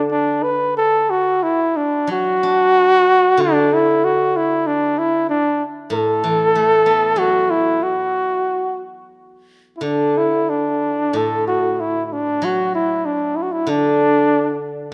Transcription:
Already playing: guzheng D3
0.11 flugelhorn D4
0.43 flugelhorn B4
0.77 flugelhorn A4
1.10 flugelhorn F#4
1.43 flugelhorn E4
1.76 flugelhorn D4
2.07 guzheng F#3
2.12 flugelhorn F#4
2.43 guzheng D4
3.37 guzheng D3, flugelhorn D4
3.74 flugelhorn E4
4.04 flugelhorn F#4
4.37 flugelhorn E4
4.67 flugelhorn D4
4.98 flugelhorn E4
5.29 flugelhorn D4
5.90 guzheng A2, flugelhorn A4
6.24 guzheng E3
6.55 guzheng A3
6.86 guzheng B3
7.16 guzheng F#3, flugelhorn F#4
7.50 flugelhorn E4
7.83 flugelhorn F#4
9.77 flugelhorn E4
9.81 guzheng D3, flugelhorn D4
10.17 flugelhorn E4
10.50 flugelhorn D4
11.13 guzheng A2, flugelhorn A4
11.48 flugelhorn F#4
11.80 flugelhorn E4
12.06 flugelhorn E4
12.13 flugelhorn D4
12.42 guzheng F#3, flugelhorn F#4
12.75 flugelhorn E4
13.06 flugelhorn D4
13.36 flugelhorn E4
13.42 flugelhorn F#4
13.52 flugelhorn E4
13.67 guzheng D3, flugelhorn D4

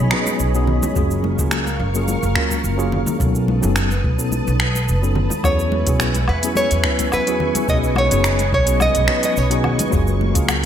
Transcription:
Already playing: string machine G#4 C#5 D#5 B5
0.11 tine electric piano F#3 B3 C#4 D#4 B4, finger snap
0.26 high conga, shaker
0.40 upright bass B1, shaker
0.55 tine electric piano F#3 B3 C#4 D#4 G#4, shaker
0.67 low conga
0.83 high conga, low conga, shaker
0.96 upright bass F#1, tine electric piano F#3 A#3 C#4 F4 G#4, string machine A#4 F5 C#6, kick, shaker
1.11 shaker
1.24 high conga
1.39 upright bass C#2, tine electric piano F#3 A#3 C#4 F4 G#4, kick, shaker
1.51 finger snap, shaker
1.67 high conga, shaker
1.80 upright bass F#1
1.94 tine electric piano F#3 A#3 C#4 F4 G#4, shaker
2.08 high conga, shaker
2.23 upright bass F#1, shaker
2.34 tine electric piano F#3 A#3 C#4 F4 A#4, finger snap, kick
2.51 kick, high conga, shaker
2.64 upright bass F#1, shaker
2.77 tine electric piano F#3 A#3 C#4 F4 G#4, shaker
2.92 low conga
3.06 high conga, low conga, shaker
3.18 upright bass B1, tine electric piano F#3 B3 C#4 D#4 A4, string machine B4 A5 D#6, kick, shaker
3.35 shaker
3.48 high conga
3.61 upright bass F#1, tine electric piano F#3 B3 C#4 D#4 A4, shaker
3.76 finger snap, shaker
3.91 high conga, shaker
4.04 upright bass B1, kick
4.18 tine electric piano F#3 B3 C#4 D#4 A4, shaker
4.32 high conga, shaker
4.47 upright bass B1, shaker
4.60 finger snap
4.75 high conga, shaker
4.88 upright bass F#1, shaker
5.02 tine electric piano F#3 B3 C#4 D#4 A4, shaker
5.15 low conga
5.30 high conga, low conga, shaker
5.43 upright bass E2, tine electric piano F#3 B3 C#4 E4 G#4, nylon-string guitar C#5, string machine E5 G#5 C#6, kick, low woodblock, shaker
5.59 shaker
5.72 high conga
5.87 upright bass B1, tine electric piano F#3 B3 C#4 E4 G#4, kick, closed hi-hat, shaker
6.00 finger snap, shaker
6.14 closed hi-hat, high conga, shaker
6.28 upright bass E2, nylon-string guitar B4, low woodblock
6.43 tine electric piano F#3 B3 C#4 E4 G#4, closed hi-hat, shaker
6.55 nylon-string guitar C#5, high conga, shaker
6.71 upright bass E2, closed hi-hat, shaker
6.84 tine electric piano F#3 B3 C#4 E4 B4, finger snap, kick
6.99 kick, closed hi-hat, high conga, shaker
7.12 upright bass E2, nylon-string guitar B4, low woodblock, shaker
7.27 tine electric piano F#3 B3 C#4 E4 G#4, closed hi-hat, shaker
7.40 low conga
7.55 closed hi-hat, high conga, low conga, shaker
7.67 upright bass B1, tine electric piano F#3 B3 C#4 D#4 G#4, string machine D#5, nylon-string guitar D#5, kick, shaker
7.84 shaker
7.96 nylon-string guitar C#5, high conga, low woodblock
8.10 upright bass F#1, tine electric piano F#3 B3 C#4 D#4 G#4, closed hi-hat, shaker
8.24 finger snap, shaker
8.39 closed hi-hat, high conga, shaker
8.52 upright bass B1, nylon-string guitar C#5, kick
8.67 tine electric piano F#3 B3 C#4 D#4 G#4, closed hi-hat, shaker
8.80 nylon-string guitar D#5, high conga, low woodblock, shaker
8.95 upright bass B1, closed hi-hat, shaker
9.07 tine electric piano F#3 B3 C#4 D#4 B4, finger snap
9.23 nylon-string guitar D#5, closed hi-hat, high conga, shaker
9.37 upright bass B1, nylon-string guitar C#5, shaker
9.50 tine electric piano F#3 B3 C#4 D#4 G#4, closed hi-hat, shaker
9.64 low conga, low woodblock
9.79 closed hi-hat, high conga, low conga, shaker
9.91 upright bass F#1, tine electric piano F#3 A#3 C#4 F4 G#4, string machine A#4 F5, kick, shaker
10.07 shaker
10.21 high conga
10.34 upright bass C#2, tine electric piano F#3 A#3 C#4 F4 G#4, kick, closed hi-hat, shaker
10.49 finger snap, low woodblock, shaker

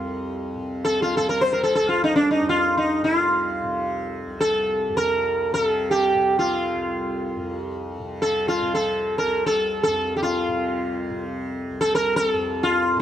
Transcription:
Already playing: tanpura C2 F2 C3
0.56 tanpura C3
0.85 sitar A4
1.02 sitar F4
1.17 tanpura C3, sitar A4
1.29 sitar A#4
1.41 sitar C5
1.53 sitar A#4
1.63 sitar A4
1.75 sitar A4
1.80 tanpura C2
1.89 sitar F4
2.04 sitar D#4
2.16 sitar D4
2.31 sitar D#4
2.42 tanpura F2
2.49 sitar F4
2.77 sitar D#4
3.02 tanpura C3, sitar F4
3.63 tanpura C3
4.27 tanpura C2
4.41 sitar A4
4.89 tanpura F2
4.97 sitar A#4
5.52 tanpura C3, sitar A#4
5.65 sitar A4
5.91 sitar G4
6.14 tanpura C3
6.39 sitar F4
6.75 tanpura C2
7.36 tanpura F2
7.99 tanpura C3
8.22 sitar A4
8.48 sitar F4
8.61 tanpura C3
8.75 sitar A4
9.18 sitar A#4
9.24 tanpura C2
9.46 sitar A4
9.83 tanpura F2, sitar A4
10.16 sitar G4
10.23 sitar F4
10.48 tanpura C3
11.10 tanpura C3
11.71 tanpura C2
11.81 sitar A4
11.95 sitar A#4
12.16 sitar A#4
12.28 sitar A4
12.34 tanpura F2
12.63 sitar F4
12.96 tanpura C3

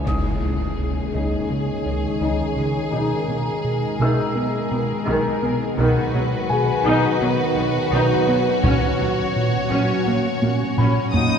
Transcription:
0.06 double bass section C#2, analog synth bass C#2, cello section C#3, ambient pad D#3 G#3 C#4 G#4, french horn section G#3 D#4, viola section D#4, violin section G#4 C#5, grand piano D#6, taiko, impact
0.42 double bass section C#2, analog synth bass C#2, cello section C#3, viola section G#3
0.79 analog synth bass C#2
1.13 double bass section C#2, analog synth bass C#2, cello section C#3, viola section D#4
1.49 double bass section C#2, cello section C#3, analog synth bass C#3, viola section G#3
1.85 double bass section C#2, analog synth bass C#2, cello section C#3, viola section C#4
2.21 analog synth bass C#2, double bass section C#2, cello section C#3, viola section D#4
2.56 double bass section C#2, cello section C#3, analog synth bass C#3, viola section G#3
2.91 double bass section B1, cello section B2, analog synth bass B2, viola section D#4, violin section A#4, french horn section A#4, ambient pad A#4
3.27 double bass section B1, analog synth bass B2, cello section B2, viola section A#3
3.64 analog synth bass B2
3.99 double bass section B1, analog synth bass B2, cello section B2, viola section D#3, grand piano E5 E6
4.35 double bass section B1, cello section B2, analog synth bass B3, viola section A#4
4.71 double bass section B1, cello section B2, analog synth bass B2, viola section B3
5.07 double bass section B1, analog synth bass B2, cello section B2, viola section D#3
5.42 double bass section B1, cello section B2, analog synth bass B3, viola section A#4
5.78 double bass section B1, analog synth bass B2, cello section B2, ambient pad D#3 F#3 B3 B4, french horn section D#3 F#3, viola section D#3, violin section F#4 B4, taiko
6.14 double bass section B1, analog synth bass B2, cello section B2, viola section F#3
6.49 analog synth bass B2, grand piano G#4 G#5
6.85 double bass section B1, analog synth bass B2, cello section B2, viola section D#4
7.21 double bass section B1, cello section B2, viola section F#3, analog synth bass B3
7.57 double bass section B1, cello section B2, analog synth bass B2, viola section B3
7.92 double bass section B1, cello section B2, analog synth bass B2, viola section D#4
8.28 double bass section B1, cello section B2, viola section F#3, analog synth bass B3
8.63 double bass section A#1, cello section A#2, analog synth bass A#2, ambient pad A#3 C#4 C#5, viola section C#4, french horn section C#4, violin section C#5, taiko
9.00 double bass section A#1, cello section A#2, analog synth bass A#2, viola section F#3
9.36 analog synth bass A#2
9.70 double bass section A#1, analog synth bass A#2, cello section A#2, viola section C#4
10.06 double bass section A#1, cello section A#2, viola section F#3, analog synth bass A#3
10.42 double bass section A#1, analog synth bass A#2, cello section A#2, viola section A#3, taiko high
10.78 double bass section A#1, cello section A#2, analog synth bass A#2, viola section C#4, grand piano B5, taiko low-mid
11.12 double bass section A#1, cello section A#2, viola section F#3 D#4, analog synth bass A#3, french horn section D#4, violin section D#6, taiko low

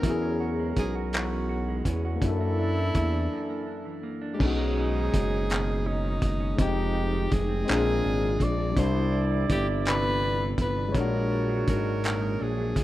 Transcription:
Already playing: clean electric guitar B2 A3 C4, tine electric piano B3, tenor saxophone A#4
0.02 analog synth bass E2, clean electric guitar E3, horn section F#3 C#4 A#4, tine electric piano C#4 F#4, kick, closed hi-hat
0.10 tine electric piano G#4
0.22 clean electric guitar C#4
0.40 clean electric guitar F#4
0.59 clean electric guitar G#3
0.76 analog synth bass B1, clean electric guitar C#4, tenor saxophone G#4, kick, closed hi-hat
0.95 clean electric guitar F#4
1.13 clean electric guitar E3, tenor saxophone F#4, clap, closed hi-hat
1.32 clean electric guitar C#4
1.49 clean electric guitar F#4
1.68 clean electric guitar G#3
1.85 analog synth bass E2, clean electric guitar C#4, kick, closed hi-hat
2.05 clean electric guitar F#4
2.16 tine electric piano A#3
2.20 clean electric guitar F#2, analog synth bass F#2, horn section E3 D4 A4, tine electric piano D4 E4, tenor saxophone E4, kick, closed hi-hat
2.28 tine electric piano A4
2.41 clean electric guitar A#3
2.59 clean electric guitar D4
2.78 clean electric guitar E3
2.95 analog synth bass E2, clean electric guitar A#3, kick, closed hi-hat
3.13 clean electric guitar D4
3.32 clean electric guitar F#2
3.49 clean electric guitar A#3
3.66 clean electric guitar D4
3.85 clean electric guitar E3
4.03 clean electric guitar A#3
4.22 clean electric guitar D4
4.34 tine electric piano G#3, tenor saxophone G4
4.39 analog synth bass B1, horn section G#2 F#3 D#4, clean electric guitar B2, tine electric piano C#4 D#4, tenor saxophone G#4, kick, crash
4.46 tine electric piano F#4
4.57 clean electric guitar G#3
4.76 clean electric guitar C#4
4.94 clean electric guitar D#3
5.12 analog synth bass F#1, clean electric guitar G#3, kick, closed hi-hat
5.31 clean electric guitar C#4
5.49 clean electric guitar B2, clap, closed hi-hat
5.68 clean electric guitar G#3
5.86 clean electric guitar C#4, tenor saxophone D#4
6.04 clean electric guitar D#3
6.22 analog synth bass F#1, clean electric guitar G#3, kick, closed hi-hat
6.40 clean electric guitar C#4
6.56 analog synth bass F1, clean electric guitar F2, horn section F3 G#3 D#4, tine electric piano G#3 C4 D#4, tenor saxophone G4, kick, closed hi-hat
6.62 tine electric piano G5
6.76 clean electric guitar G#3
6.94 clean electric guitar C4
7.12 clean electric guitar D#3
7.30 analog synth bass F1, clean electric guitar G#3, tenor saxophone G#4, kick, closed hi-hat
7.49 clean electric guitar C4
7.65 clean electric guitar A#2, horn section F3 D4 A#4, tine electric piano G#3 C4, closed hi-hat
7.69 analog synth bass A#1, tine electric piano D4 F4, clap
7.85 clean electric guitar C4
8.03 analog synth bass G#1, clean electric guitar D4
8.21 clean electric guitar G#3
8.39 analog synth bass A#1, clean electric guitar C4, kick, closed hi-hat
8.43 tenor saxophone D5
8.58 clean electric guitar D4
8.71 tine electric piano G3
8.76 analog synth bass C2, clean electric guitar C3, horn section G3 E4 D5, tine electric piano D4, tenor saxophone C5, kick, closed hi-hat
8.83 tine electric piano E4
8.95 clean electric guitar B3
9.12 clean electric guitar D4
9.31 clean electric guitar E3
9.50 analog synth bass G1, clean electric guitar B3, tenor saxophone G4, kick, closed hi-hat
9.68 clean electric guitar D4
9.86 clean electric guitar C3, tenor saxophone B4, clap, closed hi-hat
10.04 clean electric guitar B3
10.22 clean electric guitar D4
10.41 clean electric guitar E3
10.58 analog synth bass G1, clean electric guitar B3, tenor saxophone B4, kick, closed hi-hat
10.77 clean electric guitar D4
10.89 tine electric piano G#3 C#5
10.94 analog synth bass A#1, clean electric guitar A#2, horn section G#3 F#4 C#5, tine electric piano D4, tenor saxophone A#4, kick, closed hi-hat
11.00 tine electric piano F#4
11.14 clean electric guitar G#3
11.31 clean electric guitar D4
11.49 clean electric guitar F#3
11.68 analog synth bass G#1, clean electric guitar G#3, tenor saxophone A#4, kick, closed hi-hat
11.85 clean electric guitar D4
12.03 clean electric guitar A#2, clap, closed hi-hat
12.21 clean electric guitar G#3
12.39 analog synth bass A#1, clean electric guitar D4, tenor saxophone G#4
12.57 clean electric guitar F#3
12.75 analog synth bass C#2, clean electric guitar G#3, kick, closed hi-hat

